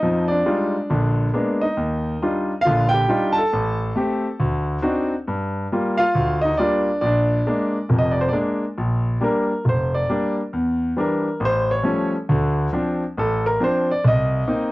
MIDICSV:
0, 0, Header, 1, 2, 480
1, 0, Start_track
1, 0, Tempo, 438276
1, 16, Time_signature, 4, 2, 24, 8
1, 16119, End_track
2, 0, Start_track
2, 0, Title_t, "Grand piano"
2, 0, Program_c, 0, 0
2, 0, Note_on_c, 0, 63, 67
2, 0, Note_on_c, 0, 75, 78
2, 30, Note_on_c, 0, 53, 67
2, 33, Note_on_c, 0, 41, 61
2, 282, Note_off_c, 0, 75, 0
2, 300, Note_off_c, 0, 63, 0
2, 307, Note_on_c, 0, 74, 84
2, 342, Note_on_c, 0, 62, 59
2, 438, Note_off_c, 0, 53, 0
2, 440, Note_off_c, 0, 41, 0
2, 504, Note_on_c, 0, 65, 64
2, 505, Note_on_c, 0, 55, 55
2, 509, Note_on_c, 0, 56, 51
2, 512, Note_on_c, 0, 63, 51
2, 828, Note_off_c, 0, 55, 0
2, 828, Note_off_c, 0, 65, 0
2, 830, Note_off_c, 0, 56, 0
2, 832, Note_off_c, 0, 63, 0
2, 985, Note_on_c, 0, 34, 68
2, 991, Note_on_c, 0, 50, 68
2, 1232, Note_off_c, 0, 74, 0
2, 1249, Note_off_c, 0, 62, 0
2, 1395, Note_off_c, 0, 34, 0
2, 1398, Note_off_c, 0, 50, 0
2, 1461, Note_on_c, 0, 56, 54
2, 1465, Note_on_c, 0, 58, 54
2, 1471, Note_on_c, 0, 59, 53
2, 1472, Note_on_c, 0, 62, 62
2, 1769, Note_on_c, 0, 75, 74
2, 1784, Note_on_c, 0, 63, 54
2, 1786, Note_off_c, 0, 56, 0
2, 1788, Note_off_c, 0, 58, 0
2, 1791, Note_off_c, 0, 59, 0
2, 1791, Note_off_c, 0, 62, 0
2, 1938, Note_on_c, 0, 39, 65
2, 2350, Note_off_c, 0, 39, 0
2, 2424, Note_off_c, 0, 63, 0
2, 2435, Note_on_c, 0, 55, 53
2, 2436, Note_on_c, 0, 62, 48
2, 2439, Note_on_c, 0, 65, 64
2, 2441, Note_on_c, 0, 63, 49
2, 2752, Note_off_c, 0, 55, 0
2, 2752, Note_off_c, 0, 62, 0
2, 2754, Note_off_c, 0, 63, 0
2, 2754, Note_off_c, 0, 65, 0
2, 2862, Note_on_c, 0, 77, 98
2, 2905, Note_on_c, 0, 65, 70
2, 2916, Note_on_c, 0, 50, 68
2, 2922, Note_on_c, 0, 34, 71
2, 2926, Note_off_c, 0, 75, 0
2, 3162, Note_on_c, 0, 79, 105
2, 3165, Note_off_c, 0, 77, 0
2, 3188, Note_off_c, 0, 65, 0
2, 3216, Note_on_c, 0, 67, 68
2, 3319, Note_off_c, 0, 50, 0
2, 3322, Note_off_c, 0, 34, 0
2, 3376, Note_on_c, 0, 55, 57
2, 3378, Note_on_c, 0, 63, 52
2, 3385, Note_on_c, 0, 62, 54
2, 3390, Note_on_c, 0, 65, 66
2, 3640, Note_on_c, 0, 81, 84
2, 3655, Note_off_c, 0, 67, 0
2, 3676, Note_off_c, 0, 79, 0
2, 3701, Note_on_c, 0, 69, 68
2, 3702, Note_off_c, 0, 55, 0
2, 3703, Note_off_c, 0, 63, 0
2, 3706, Note_off_c, 0, 62, 0
2, 3708, Note_off_c, 0, 65, 0
2, 3863, Note_on_c, 0, 33, 68
2, 4271, Note_off_c, 0, 33, 0
2, 4331, Note_on_c, 0, 57, 58
2, 4344, Note_on_c, 0, 67, 63
2, 4346, Note_on_c, 0, 60, 52
2, 4658, Note_off_c, 0, 57, 0
2, 4665, Note_off_c, 0, 67, 0
2, 4666, Note_off_c, 0, 60, 0
2, 4814, Note_on_c, 0, 38, 67
2, 5226, Note_off_c, 0, 38, 0
2, 5281, Note_on_c, 0, 60, 62
2, 5284, Note_on_c, 0, 62, 54
2, 5285, Note_on_c, 0, 66, 67
2, 5286, Note_on_c, 0, 63, 55
2, 5534, Note_off_c, 0, 81, 0
2, 5565, Note_off_c, 0, 69, 0
2, 5613, Note_off_c, 0, 60, 0
2, 5614, Note_off_c, 0, 62, 0
2, 5615, Note_off_c, 0, 63, 0
2, 5615, Note_off_c, 0, 66, 0
2, 5776, Note_on_c, 0, 43, 66
2, 6187, Note_off_c, 0, 43, 0
2, 6265, Note_on_c, 0, 55, 58
2, 6266, Note_on_c, 0, 58, 53
2, 6273, Note_on_c, 0, 65, 60
2, 6542, Note_on_c, 0, 77, 96
2, 6548, Note_off_c, 0, 65, 0
2, 6564, Note_on_c, 0, 65, 80
2, 6584, Note_off_c, 0, 55, 0
2, 6585, Note_off_c, 0, 58, 0
2, 6733, Note_on_c, 0, 38, 67
2, 6995, Note_off_c, 0, 77, 0
2, 7008, Note_off_c, 0, 65, 0
2, 7025, Note_on_c, 0, 75, 84
2, 7063, Note_on_c, 0, 63, 65
2, 7145, Note_off_c, 0, 38, 0
2, 7201, Note_on_c, 0, 74, 83
2, 7205, Note_off_c, 0, 75, 0
2, 7208, Note_off_c, 0, 63, 0
2, 7217, Note_on_c, 0, 58, 52
2, 7220, Note_on_c, 0, 55, 61
2, 7224, Note_on_c, 0, 65, 60
2, 7243, Note_on_c, 0, 62, 63
2, 7540, Note_off_c, 0, 58, 0
2, 7542, Note_off_c, 0, 55, 0
2, 7544, Note_off_c, 0, 65, 0
2, 7665, Note_off_c, 0, 74, 0
2, 7672, Note_off_c, 0, 62, 0
2, 7681, Note_on_c, 0, 74, 84
2, 7683, Note_on_c, 0, 34, 71
2, 7733, Note_on_c, 0, 62, 67
2, 8100, Note_off_c, 0, 34, 0
2, 8166, Note_off_c, 0, 62, 0
2, 8179, Note_on_c, 0, 56, 57
2, 8183, Note_on_c, 0, 62, 66
2, 8184, Note_on_c, 0, 58, 51
2, 8501, Note_off_c, 0, 56, 0
2, 8503, Note_off_c, 0, 62, 0
2, 8504, Note_off_c, 0, 58, 0
2, 8644, Note_on_c, 0, 41, 64
2, 8649, Note_on_c, 0, 29, 65
2, 8705, Note_off_c, 0, 74, 0
2, 8746, Note_on_c, 0, 75, 76
2, 8879, Note_off_c, 0, 75, 0
2, 8887, Note_on_c, 0, 74, 70
2, 8989, Note_off_c, 0, 74, 0
2, 8991, Note_on_c, 0, 72, 70
2, 9059, Note_off_c, 0, 72, 0
2, 9060, Note_off_c, 0, 41, 0
2, 9063, Note_off_c, 0, 29, 0
2, 9074, Note_on_c, 0, 74, 71
2, 9117, Note_on_c, 0, 56, 55
2, 9118, Note_on_c, 0, 58, 50
2, 9121, Note_on_c, 0, 62, 65
2, 9135, Note_off_c, 0, 74, 0
2, 9451, Note_off_c, 0, 56, 0
2, 9451, Note_off_c, 0, 58, 0
2, 9453, Note_off_c, 0, 62, 0
2, 9611, Note_on_c, 0, 34, 67
2, 10024, Note_off_c, 0, 34, 0
2, 10083, Note_on_c, 0, 55, 57
2, 10090, Note_on_c, 0, 62, 58
2, 10092, Note_on_c, 0, 58, 52
2, 10119, Note_on_c, 0, 70, 66
2, 10414, Note_off_c, 0, 55, 0
2, 10417, Note_off_c, 0, 62, 0
2, 10419, Note_off_c, 0, 58, 0
2, 10551, Note_off_c, 0, 70, 0
2, 10569, Note_on_c, 0, 29, 60
2, 10611, Note_on_c, 0, 72, 72
2, 10890, Note_on_c, 0, 74, 78
2, 10893, Note_off_c, 0, 72, 0
2, 10984, Note_off_c, 0, 29, 0
2, 11055, Note_on_c, 0, 55, 60
2, 11055, Note_on_c, 0, 58, 53
2, 11060, Note_on_c, 0, 62, 60
2, 11332, Note_off_c, 0, 74, 0
2, 11381, Note_off_c, 0, 55, 0
2, 11381, Note_off_c, 0, 58, 0
2, 11383, Note_off_c, 0, 62, 0
2, 11533, Note_on_c, 0, 40, 69
2, 11946, Note_off_c, 0, 40, 0
2, 12009, Note_on_c, 0, 52, 52
2, 12012, Note_on_c, 0, 55, 50
2, 12024, Note_on_c, 0, 62, 61
2, 12050, Note_on_c, 0, 70, 65
2, 12338, Note_off_c, 0, 52, 0
2, 12340, Note_off_c, 0, 55, 0
2, 12346, Note_off_c, 0, 62, 0
2, 12478, Note_off_c, 0, 70, 0
2, 12489, Note_on_c, 0, 33, 73
2, 12543, Note_on_c, 0, 72, 89
2, 12820, Note_off_c, 0, 72, 0
2, 12828, Note_on_c, 0, 73, 83
2, 12905, Note_off_c, 0, 33, 0
2, 12961, Note_on_c, 0, 53, 56
2, 12969, Note_on_c, 0, 55, 49
2, 12970, Note_on_c, 0, 57, 50
2, 12977, Note_on_c, 0, 61, 64
2, 13263, Note_off_c, 0, 73, 0
2, 13295, Note_off_c, 0, 53, 0
2, 13299, Note_off_c, 0, 55, 0
2, 13299, Note_off_c, 0, 57, 0
2, 13303, Note_off_c, 0, 61, 0
2, 13460, Note_on_c, 0, 50, 68
2, 13462, Note_on_c, 0, 38, 72
2, 13871, Note_off_c, 0, 50, 0
2, 13872, Note_off_c, 0, 38, 0
2, 13938, Note_on_c, 0, 53, 58
2, 13938, Note_on_c, 0, 60, 53
2, 13946, Note_on_c, 0, 62, 64
2, 14263, Note_off_c, 0, 53, 0
2, 14264, Note_off_c, 0, 60, 0
2, 14267, Note_off_c, 0, 62, 0
2, 14428, Note_on_c, 0, 33, 68
2, 14447, Note_on_c, 0, 69, 79
2, 14732, Note_off_c, 0, 69, 0
2, 14744, Note_on_c, 0, 70, 89
2, 14836, Note_off_c, 0, 33, 0
2, 14897, Note_off_c, 0, 70, 0
2, 14897, Note_on_c, 0, 53, 57
2, 14900, Note_on_c, 0, 60, 53
2, 14901, Note_on_c, 0, 62, 61
2, 14937, Note_on_c, 0, 72, 80
2, 15218, Note_off_c, 0, 72, 0
2, 15223, Note_off_c, 0, 53, 0
2, 15225, Note_off_c, 0, 60, 0
2, 15225, Note_off_c, 0, 62, 0
2, 15239, Note_on_c, 0, 74, 78
2, 15382, Note_on_c, 0, 36, 68
2, 15385, Note_off_c, 0, 74, 0
2, 15413, Note_on_c, 0, 75, 84
2, 15792, Note_off_c, 0, 36, 0
2, 15853, Note_on_c, 0, 58, 58
2, 15856, Note_on_c, 0, 60, 50
2, 15856, Note_on_c, 0, 63, 62
2, 16119, Note_off_c, 0, 58, 0
2, 16119, Note_off_c, 0, 60, 0
2, 16119, Note_off_c, 0, 63, 0
2, 16119, Note_off_c, 0, 75, 0
2, 16119, End_track
0, 0, End_of_file